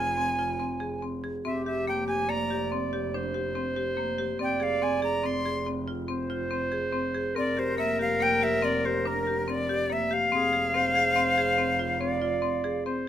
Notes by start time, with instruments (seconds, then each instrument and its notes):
Already playing: double bass F1, marimba F4, flute G#5
0.17 marimba C4
0.39 marimba F4
0.59 marimba C4
0.80 marimba G#4
1.02 marimba C4
1.24 marimba G#4
1.44 double bass F1, marimba C4, clarinet G4, flute E5
1.66 marimba G4, flute E5
1.87 marimba A#3, flute G5
2.08 marimba G4, flute G#5
2.28 marimba A#3, clarinet D5, flute A#5
2.50 marimba G4
2.72 marimba C4
2.93 marimba G4
3.14 marimba D4, clarinet C5
3.34 marimba G4
3.55 marimba C4
3.77 marimba G4
3.97 marimba A#3
4.18 marimba G4
4.39 double bass F1, marimba C4, clarinet D5, flute G5
4.60 marimba G#4, flute F5
4.82 marimba C4, flute G#5
5.02 marimba G#4, flute A#5
5.24 marimba C4, flute C6
5.45 marimba G#4
5.66 marimba C4
5.88 marimba F4
6.08 marimba C4, clarinet C5
6.30 marimba F4
6.51 marimba C4
6.72 marimba G#4
6.93 marimba C4
7.15 marimba G#4
7.35 double bass F1, marimba C4, clarinet A#4, flute D5
7.57 marimba G4, flute C5
7.78 marimba A#3, flute E5
7.99 marimba G4, flute F5
8.20 marimba A#3, flute G5
8.41 marimba G4, flute E5
8.62 marimba C4, flute D5
8.85 marimba G4, flute C5
9.05 marimba D4, flute A#4
9.27 marimba G4
9.48 marimba C4, flute D5
9.69 marimba G4
9.90 marimba A#3, flute E5
10.11 marimba G4, flute F5
10.32 double bass F1, marimba C4, clarinet G#4
10.53 marimba G#4
10.74 marimba C4, clarinet C5
10.95 marimba G#4
11.16 marimba C4
11.38 marimba G#4
11.58 marimba C4
11.79 marimba F4
12.00 marimba C4, clarinet D5
12.22 marimba F4
12.42 marimba C4
12.64 marimba G#4
12.86 marimba C4, clarinet C5